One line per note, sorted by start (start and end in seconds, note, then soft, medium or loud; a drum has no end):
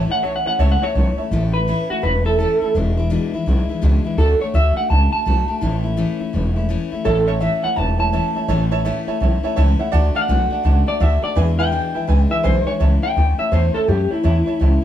0.00 0.10 E3 medium
0.00 0.10 A3 loud
0.09 0.22 A3 soft
0.09 0.23 C#4 medium
0.09 0.23 E4 medium
0.09 0.18 C#5 medium
0.09 0.18 E5 medium
0.09 0.23 F#5 loud
0.09 0.18 A5 medium
0.09 muted upright bass stroke medium
0.22 0.44 B1 medium
0.22 0.46 E3 medium
0.22 0.46 A3 medium
0.22 0.46 C#4 medium
0.22 0.44 E4 medium
0.22 0.37 C#5 medium
0.22 0.35 C#5 medium
0.22 0.37 E5 medium
0.22 0.37 A5 medium
0.36 0.46 F#5 medium
0.45 0.59 A3 soft
0.45 0.60 C#4 medium
0.45 0.59 E4 medium
0.45 0.54 C#5 medium
0.45 0.54 E5 medium
0.45 0.59 F#5 medium
0.45 0.54 A5 medium
0.45 muted upright bass stroke soft
0.59 0.81 C#2 medium
0.59 0.82 A2 medium
0.59 0.82 E3 medium
0.59 0.83 A3 medium
0.59 0.82 C#4 medium
0.59 0.81 E4 medium
0.59 0.73 C#5 loud
0.59 0.71 C#5 medium
0.59 0.73 E5 loud
0.59 0.73 A5 loud
0.72 0.83 F#5 medium
0.82 0.95 A3 soft
0.82 0.96 C#4 medium
0.82 0.95 E4 medium
0.82 0.90 C#5 medium
0.82 1.18 C#5 loud
0.82 0.90 E5 medium
0.82 0.90 A5 medium
0.82 muted upright bass stroke medium
0.94 1.17 B1 medium
0.94 1.18 E3 medium
0.94 1.18 A3 medium
0.94 1.18 C#4 medium
0.94 1.17 E4 medium
0.94 1.08 C#5 medium
0.94 1.09 E5 medium
0.94 1.09 A5 medium
1.17 1.31 A3 soft
1.17 1.32 C#4 medium
1.17 1.31 E4 medium
1.17 1.25 C#5 medium
1.17 1.26 E5 medium
1.17 1.26 A5 medium
1.17 muted upright bass stroke medium
1.31 1.72 A1 medium
1.31 1.54 A2 medium
1.31 1.54 E3 medium
1.31 1.54 A3 loud
1.31 1.55 C#4 medium
1.31 1.53 E4 loud
1.54 1.67 A3 soft
1.54 1.68 C#4 soft
1.54 1.67 E4 medium
1.54 1.88 B4 medium
1.67 1.90 A2 medium
1.67 1.90 E3 medium
1.67 1.90 A3 medium
1.67 1.90 C#4 medium
1.67 1.88 E4 loud
1.90 2.02 A3 soft
1.90 2.03 C#4 soft
1.90 2.03 E4 medium
1.90 2.03 F#4 medium
1.90 muted upright bass stroke medium
2.02 2.44 E1 medium
2.02 2.25 E3 medium
2.02 2.26 A3 medium
2.02 2.25 C#4 medium
2.02 2.24 E4 medium
2.02 2.25 B4 medium
2.25 2.39 A3 soft
2.25 2.39 C#4 medium
2.25 2.38 E4 medium
2.25 2.38 A4 loud
2.39 2.61 A2 medium
2.39 2.62 E3 medium
2.39 2.62 A3 medium
2.39 2.62 C#4 medium
2.39 2.60 E4 loud
2.39 2.74 A4 loud
2.61 2.75 A3 soft
2.61 2.75 C#4 medium
2.61 2.75 E4 medium
2.61 muted upright bass stroke medium
2.74 3.16 E1 medium
2.74 2.97 E2 medium
2.74 2.98 B2 medium
2.74 2.98 E3 medium
2.74 2.98 G#3 medium
2.74 2.97 D4 medium
2.74 2.96 E4 medium
2.97 3.09 E3 medium
2.97 3.10 G#3 medium
2.97 3.10 D4 medium
2.97 3.11 E4 medium
3.10 3.33 E2 loud
3.10 3.33 B2 loud
3.10 3.33 E3 medium
3.10 3.33 G#3 loud
3.10 3.33 D4 medium
3.10 3.32 E4 medium
3.34 3.45 E3 medium
3.34 3.46 G#3 medium
3.34 3.47 D4 medium
3.34 3.47 E4 medium
3.34 muted upright bass stroke medium
3.46 3.66 B1 medium
3.46 3.69 E3 medium
3.46 3.69 G#3 medium
3.46 3.69 D4 medium
3.46 3.68 E4 medium
3.69 3.81 E3 medium
3.69 3.82 G#3 medium
3.69 3.82 D4 medium
3.69 3.82 E4 medium
3.69 muted upright bass stroke medium
3.82 4.02 C#2 medium
3.82 4.05 E2 medium
3.82 4.05 B2 loud
3.82 4.05 E3 medium
3.82 4.05 G#3 loud
3.82 4.04 D4 loud
3.82 4.03 E4 medium
4.04 4.17 E3 medium
4.04 4.18 G#3 medium
4.04 4.18 D4 medium
4.04 4.18 E4 medium
4.04 muted upright bass stroke medium
4.17 4.33 D2 medium
4.17 4.41 D3 medium
4.17 4.41 A3 medium
4.17 4.41 D4 medium
4.17 4.39 F#4 loud
4.17 4.40 A4 loud
4.40 4.53 A3 medium
4.40 4.54 D4 medium
4.40 4.54 F#4 medium
4.40 4.54 C#5 medium
4.40 muted upright bass stroke medium
4.54 4.73 D2 medium
4.54 4.77 D3 medium
4.54 4.77 A3 medium
4.54 4.77 D4 medium
4.54 4.75 F#4 loud
4.54 4.77 E5 loud
4.76 4.89 A3 soft
4.76 4.90 D4 soft
4.76 4.90 F#4 medium
4.76 4.90 F#5 medium
4.76 muted upright bass stroke medium
4.89 5.09 C#2 medium
4.89 5.12 D3 medium
4.89 5.13 A3 medium
4.89 5.12 D4 medium
4.89 5.11 F#4 medium
4.89 5.11 A5 loud
5.12 5.25 A3 soft
5.12 5.26 D4 medium
5.12 5.26 F#4 medium
5.12 6.17 A5 loud
5.12 muted upright bass stroke medium
5.26 5.45 B1 medium
5.26 5.48 D3 medium
5.26 5.49 A3 medium
5.26 5.48 D4 medium
5.26 5.47 F#4 medium
5.48 5.61 A3 medium
5.48 5.62 D4 medium
5.48 5.61 F#4 medium
5.48 muted upright bass stroke medium
5.61 6.03 A1 medium
5.61 5.84 A2 medium
5.61 5.84 E3 medium
5.61 5.85 A3 loud
5.61 5.84 C#4 medium
5.61 5.83 E4 medium
5.84 5.96 A3 medium
5.84 5.97 C#4 medium
5.84 5.97 E4 medium
5.97 6.20 A2 medium
5.97 6.20 E3 loud
5.97 6.20 A3 loud
5.97 6.20 C#4 medium
5.97 6.18 E4 loud
6.20 6.33 A3 medium
6.20 6.34 C#4 medium
6.20 6.33 E4 medium
6.20 muted upright bass stroke medium
6.33 6.75 E1 medium
6.33 6.56 E3 medium
6.33 6.56 A3 medium
6.33 6.56 C#4 medium
6.33 6.55 E4 medium
6.56 6.69 A3 soft
6.56 6.69 C#4 medium
6.56 6.69 E4 medium
6.69 6.92 A2 loud
6.69 6.92 E3 medium
6.69 6.92 A3 medium
6.69 6.92 C#4 loud
6.69 6.90 E4 medium
6.92 7.04 A3 medium
6.92 7.05 C#4 medium
6.92 7.05 E4 medium
6.92 muted upright bass stroke medium
7.05 7.47 A1 loud
7.05 7.28 A2 medium
7.05 7.28 E3 medium
7.05 7.28 A3 medium
7.05 7.27 C#4 medium
7.05 7.26 E4 medium
7.05 7.27 A4 loud
7.05 7.19 C#5 loud
7.05 7.19 E5 loud
7.05 7.19 A5 loud
7.27 7.40 A3 soft
7.27 7.41 C#4 medium
7.27 7.41 E4 medium
7.27 7.36 C#5 loud
7.27 7.41 C#5 medium
7.27 7.36 E5 medium
7.27 7.36 A5 loud
7.40 7.64 A2 medium
7.40 7.64 E3 medium
7.40 7.64 A3 loud
7.40 7.63 C#4 medium
7.40 7.61 E4 medium
7.40 7.54 C#5 medium
7.40 7.55 E5 medium
7.40 7.63 E5 medium
7.40 7.55 A5 medium
7.63 7.76 A3 soft
7.63 7.77 C#4 soft
7.63 7.77 E4 medium
7.63 7.71 C#5 medium
7.63 7.72 E5 medium
7.63 7.76 F#5 medium
7.63 7.72 A5 medium
7.63 muted upright bass stroke medium
7.76 8.18 E1 medium
7.76 7.99 E3 medium
7.76 8.00 A3 medium
7.76 7.99 C#4 medium
7.76 7.98 E4 medium
7.76 7.90 C#5 medium
7.76 7.91 E5 medium
7.76 7.99 A5 medium
7.76 7.91 A5 medium
7.99 8.12 A3 soft
7.99 8.13 C#4 medium
7.99 8.13 E4 medium
7.99 8.07 C#5 medium
7.99 8.08 E5 medium
7.99 8.08 A5 medium
7.99 9.04 A5 medium
8.13 8.36 A2 medium
8.13 8.36 E3 medium
8.13 8.36 A3 medium
8.13 8.35 C#4 medium
8.13 8.34 E4 medium
8.13 8.27 C#5 loud
8.13 8.27 E5 loud
8.13 8.27 A5 loud
8.35 8.48 A3 soft
8.35 8.49 C#4 medium
8.35 8.49 E4 medium
8.35 8.44 C#5 medium
8.35 8.44 E5 medium
8.35 8.44 A5 medium
8.35 muted upright bass stroke medium
8.48 8.90 A1 medium
8.48 8.72 A2 medium
8.48 8.72 E3 medium
8.48 8.72 A3 loud
8.48 8.71 C#4 loud
8.48 8.70 E4 loud
8.48 8.62 C#5 loud
8.48 8.62 E5 loud
8.48 8.63 A5 loud
8.71 8.85 A3 medium
8.71 8.85 C#4 medium
8.71 8.85 E4 medium
8.71 8.80 C#5 loud
8.71 8.80 E5 loud
8.71 8.80 A5 loud
8.85 9.08 A2 loud
8.85 9.08 E3 medium
8.85 9.08 A3 medium
8.85 9.07 C#4 loud
8.85 9.06 E4 loud
8.85 8.98 C#5 loud
8.85 8.99 E5 medium
8.85 8.99 A5 loud
9.07 9.20 A3 medium
9.07 9.21 C#4 medium
9.07 9.21 E4 medium
9.07 9.16 C#5 loud
9.07 9.16 E5 medium
9.07 9.16 A5 loud
9.07 muted upright bass stroke medium
9.20 9.40 B1 medium
9.20 9.43 E3 medium
9.20 9.44 A3 medium
9.20 9.44 C#4 medium
9.20 9.42 E4 medium
9.20 9.35 C#5 medium
9.20 9.35 E5 medium
9.20 9.35 A5 medium
9.43 9.56 A3 medium
9.43 9.57 C#4 medium
9.43 9.57 E4 medium
9.43 9.52 C#5 loud
9.43 9.52 E5 medium
9.43 9.52 A5 loud
9.43 muted upright bass stroke medium
9.56 9.76 C#2 medium
9.56 9.79 A2 medium
9.56 9.80 E3 medium
9.56 9.80 A3 loud
9.56 9.79 C#4 medium
9.56 9.78 E4 loud
9.56 9.70 C#5 loud
9.56 9.70 E5 loud
9.56 9.71 A5 loud
9.79 9.92 A3 medium
9.79 9.93 C#4 medium
9.79 9.93 E4 medium
9.79 9.87 C#5 medium
9.79 9.87 E5 medium
9.79 9.88 F#5 loud
9.79 muted upright bass stroke medium
9.92 10.09 D2 medium
9.92 10.15 D3 medium
9.92 10.16 A3 loud
9.92 10.16 D4 loud
9.92 10.14 F#4 loud
9.92 10.06 D5 loud
9.92 10.06 F#5 loud
9.92 10.06 A5 loud
10.15 10.28 A3 soft
10.15 10.28 D4 medium
10.15 10.29 F#4 medium
10.15 10.23 D5 loud
10.15 10.23 F#5 loud
10.15 10.86 F#5 loud
10.15 10.24 A5 loud
10.15 muted upright bass stroke medium
10.28 10.48 B1 medium
10.28 10.51 D3 medium
10.28 10.52 A3 loud
10.28 10.51 D4 medium
10.28 10.49 F#4 medium
10.28 10.42 D5 medium
10.28 10.43 F#5 medium
10.28 10.43 G#5 medium
10.50 10.63 A3 soft
10.50 10.64 D4 medium
10.50 10.64 F#4 medium
10.50 10.60 D5 medium
10.50 10.60 F#5 medium
10.50 10.60 A5 medium
10.50 muted upright bass stroke medium
10.64 10.84 C#2 medium
10.64 10.87 D3 medium
10.64 10.87 A3 medium
10.64 10.87 D4 medium
10.64 10.85 F#4 medium
10.64 10.78 D5 medium
10.64 10.78 F#5 medium
10.64 10.78 A5 loud
10.87 10.99 A3 soft
10.87 11.00 D4 medium
10.87 11.00 F#4 medium
10.87 10.95 D5 medium
10.87 11.01 D5 loud
10.87 10.95 F#5 medium
10.87 10.96 A5 medium
10.87 muted upright bass stroke medium
11.00 11.20 D2 medium
11.00 11.23 D3 medium
11.00 11.23 A3 medium
11.00 11.23 D4 medium
11.00 11.21 F#4 medium
11.00 11.14 D5 medium
11.00 11.23 E5 loud
11.00 11.14 F#5 medium
11.00 11.15 A5 loud
11.22 11.36 A3 soft
11.22 11.36 D4 medium
11.22 11.36 F#4 medium
11.22 11.31 D5 medium
11.22 11.36 D5 loud
11.22 11.31 F#5 medium
11.22 11.32 A5 medium
11.22 muted upright bass stroke medium
11.35 11.59 E2 medium
11.35 11.77 E2 medium
11.35 11.59 B2 medium
11.35 11.59 E3 medium
11.35 11.59 G#3 medium
11.35 11.58 D4 medium
11.35 11.57 E4 medium
11.35 11.50 B4 loud
11.35 11.50 E5 medium
11.35 11.50 G#5 loud
11.58 11.71 E3 soft
11.58 11.71 G#3 soft
11.58 11.72 D4 medium
11.58 11.72 E4 medium
11.58 11.67 B4 loud
11.58 11.67 E5 medium
11.58 12.29 G5 loud
11.58 11.67 G#5 loud
11.71 11.95 E2 medium
11.71 11.95 B2 medium
11.71 11.95 E3 medium
11.71 11.95 G#3 medium
11.71 11.94 D4 medium
11.71 11.93 E4 medium
11.71 11.86 B4 medium
11.71 11.86 E5 medium
11.71 11.86 G#5 medium
11.94 12.06 E3 soft
11.94 12.08 G#3 soft
11.94 12.09 D4 medium
11.94 12.08 E4 medium
11.94 12.03 B4 medium
11.94 12.03 E5 medium
11.94 12.03 G#5 medium
11.94 muted upright bass stroke medium
12.07 12.28 C#2 medium
12.07 12.31 E3 medium
12.07 12.30 G#3 medium
12.07 12.30 D4 medium
12.07 12.29 E4 medium
12.07 12.22 B4 medium
12.07 12.22 E5 medium
12.07 12.22 G#5 loud
12.30 12.43 E3 soft
12.30 12.43 G#3 soft
12.30 12.44 D4 medium
12.30 12.44 E4 medium
12.30 12.39 B4 medium
12.30 12.39 E5 medium
12.30 12.44 E5 loud
12.30 12.39 G#5 medium
12.30 muted upright bass stroke medium
12.43 12.64 B1 medium
12.43 12.67 E2 medium
12.43 12.67 B2 medium
12.43 12.67 E3 medium
12.43 12.67 G#3 medium
12.43 12.66 D4 medium
12.43 12.65 E4 medium
12.43 12.58 B4 loud
12.43 12.66 C5 loud
12.43 12.58 E5 medium
12.43 12.58 G#5 loud
12.66 12.79 E3 soft
12.66 12.80 G#3 medium
12.66 12.80 D4 medium
12.66 12.80 E4 medium
12.66 12.75 B4 medium
12.66 12.80 C#5 loud
12.66 12.75 E5 medium
12.66 12.75 G#5 medium
12.66 muted upright bass stroke medium
12.80 13.02 C#2 medium
12.80 13.03 A2 medium
12.80 13.03 E3 medium
12.80 13.03 A3 medium
12.80 13.02 C#4 medium
12.80 13.01 E4 medium
12.80 12.94 C#5 loud
12.80 12.94 E5 medium
12.80 12.94 A5 loud
13.02 13.16 A3 soft
13.02 13.17 C#4 soft
13.02 13.16 E4 medium
13.02 13.11 C#5 medium
13.02 13.11 E5 medium
13.02 13.38 G5 loud
13.02 13.11 A5 medium
13.02 muted upright bass stroke medium
13.16 13.38 D2 medium
13.16 13.39 E3 medium
13.16 13.40 A3 medium
13.16 13.39 C#4 medium
13.16 13.37 E4 medium
13.16 13.30 C#5 medium
13.16 13.30 E5 medium
13.16 13.30 A5 medium
13.38 13.52 A3 soft
13.38 13.52 C#4 soft
13.38 13.52 E4 medium
13.38 13.47 C#5 medium
13.38 13.47 E5 medium
13.38 13.52 E5 medium
13.38 13.47 A5 medium
13.38 muted upright bass stroke medium
13.52 13.74 E2 medium
13.52 13.75 A2 medium
13.52 13.75 E3 medium
13.52 13.75 A3 medium
13.52 13.74 C#4 medium
13.52 13.73 E4 medium
13.52 13.74 C5 medium
13.52 13.66 C#5 loud
13.52 13.66 E5 medium
13.52 13.66 A5 loud
13.74 13.87 A3 soft
13.74 13.88 C#4 soft
13.74 13.88 E4 medium
13.74 13.88 A4 medium
13.74 13.83 C#5 medium
13.74 13.83 E5 medium
13.74 13.83 A5 medium
13.74 muted upright bass stroke medium
13.87 14.11 F#2 medium
13.87 14.11 E3 medium
13.87 14.11 A3 medium
13.87 14.11 C#4 medium
13.87 14.09 E4 medium
13.87 14.11 G4 medium
13.87 14.02 C#5 medium
13.87 14.02 E5 medium
13.87 14.02 A5 medium
14.11 14.23 A3 soft
14.11 14.23 C#4 medium
14.11 14.24 E4 medium
14.11 14.84 E4 medium
14.11 14.19 C#5 medium
14.11 14.19 E5 medium
14.11 14.20 A5 medium
14.11 muted upright bass stroke medium
14.23 14.47 E2 medium
14.23 14.47 A2 medium
14.23 14.47 E3 medium
14.23 14.47 A3 medium
14.23 14.46 C#4 medium
14.23 14.45 E4 medium
14.23 14.38 C#5 loud
14.23 14.38 E5 medium
14.23 14.38 A5 loud
14.46 14.59 A3 soft
14.46 14.60 C#4 medium
14.46 14.60 E4 medium
14.46 14.55 C#5 medium
14.46 14.55 E5 medium
14.46 14.55 A5 medium
14.46 muted upright bass stroke medium
14.59 14.83 C#2 medium
14.59 14.83 E3 medium
14.59 14.83 A3 medium
14.59 14.82 C#4 medium
14.59 14.81 E4 medium
14.59 14.74 C#5 medium
14.59 14.74 E5 medium
14.59 14.75 A5 loud